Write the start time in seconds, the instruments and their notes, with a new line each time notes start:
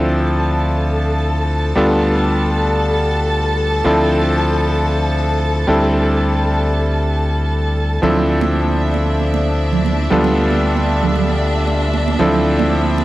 Already playing: fingered electric bass D2, electric grand piano F3 C4 D4 E4 A4, violin section A4 A5
1.75 fingered electric bass D2, electric grand piano G3 B3 D4 F4 A4
3.84 fingered electric bass D2, electric grand piano F3 C4 D4 E4 A4
5.67 fingered electric bass D2, electric grand piano G3 C4 D4 E4 A4
8.02 fingered electric bass D2, electric grand piano F3 C4 D4 E4 A4, violin section D4 E5, muted conga, low conga
8.41 muted conga, high conga
8.94 muted conga
9.20 high conga
9.34 muted conga
9.73 low conga
9.85 muted conga, high conga
10.10 fingered electric bass D2, electric grand piano G3 B3 D4 F4 A4, low conga
10.24 muted conga
10.50 high conga
10.77 muted conga
11.03 low conga
11.15 muted conga, low conga
11.28 high conga
11.67 muted conga
11.94 high conga
12.08 muted conga
12.19 fingered electric bass D2, electric grand piano F3 C4 D4 E4 A4, low conga
12.59 muted conga, high conga
12.98 muted conga